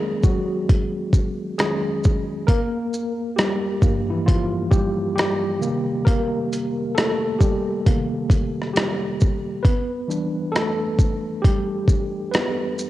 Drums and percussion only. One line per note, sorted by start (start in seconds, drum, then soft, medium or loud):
0.23 kick medium
0.23 shaker soft
0.69 kick loud
0.69 closed hi-hat medium
1.13 kick loud
1.13 shaker soft
1.59 cross-stick loud
1.59 closed hi-hat medium
2.04 kick medium
2.04 shaker medium
2.48 kick loud
2.48 closed hi-hat medium
2.94 shaker soft
3.39 cross-stick loud
3.39 closed hi-hat medium
3.82 kick loud
3.82 shaker soft
4.28 kick loud
4.28 closed hi-hat medium
4.72 kick medium
4.72 shaker soft
5.18 cross-stick loud
5.18 closed hi-hat medium
5.62 shaker soft
6.07 kick loud
6.07 closed hi-hat medium
6.53 closed hi-hat soft
6.53 shaker soft
6.98 cross-stick loud
6.98 closed hi-hat medium
7.41 kick medium
7.41 shaker soft
7.86 kick loud
7.86 closed hi-hat medium
8.30 kick loud
8.30 closed hi-hat soft
8.30 shaker soft
8.62 cross-stick soft
8.76 cross-stick loud
8.76 closed hi-hat medium
9.21 kick medium
9.21 shaker soft
9.65 kick loud
9.65 closed hi-hat medium
10.11 shaker soft
10.55 cross-stick medium
10.55 closed hi-hat medium
10.98 kick medium
10.98 shaker soft
11.44 kick loud
11.44 closed hi-hat medium
11.88 kick loud
11.88 shaker soft
12.34 cross-stick loud
12.34 closed hi-hat medium
12.79 shaker medium